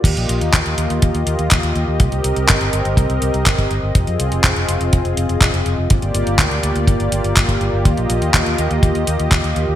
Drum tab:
CC |x---------------|----------------|----------------|----------------|
HH |xxxxxxxxxxxxxxx-|xxxxxxxxxxxxxxx-|xxxxxxxxxxxxxxx-|xxxxxxxxxxxxxxx-|
CP |----x-------x---|----x-------x---|----x-------x---|----x-------x---|
BD |o---o---o---o---|o---o---o---oo--|o---o---o---o---|o---o---o---oo--|

CC |----------------|
HH |xxxxxxxxxxxxxxx-|
CP |----x-------x---|
BD |o---o---o---o---|